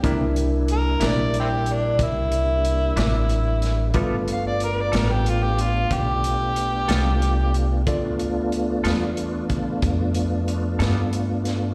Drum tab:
HH |xxxxxxxxxxxx|xxxxxxxxxxxx|xxxxxxxxxxxx|
SD |---o-----o-o|---o-----o--|---o-----o-o|
BD |o-----o-----|o-----o-----|o----oo-----|